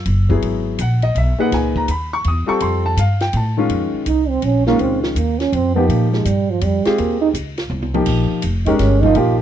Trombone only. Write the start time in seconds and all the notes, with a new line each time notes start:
4.07 D#4
4.29 C4
4.44 C#4
4.67 A#3
4.81 C4
5.02 F3
5.17 A#3
5.39 C#4
5.54 C4
5.75 B3
5.89 A#3
6.12 G#3
6.25 G3
6.50 F3
6.64 G3
6.85 G#3
6.99 A#3
7.21 D#4
8.66 D#4
8.80 C#4
9.02 D#4
9.18 F4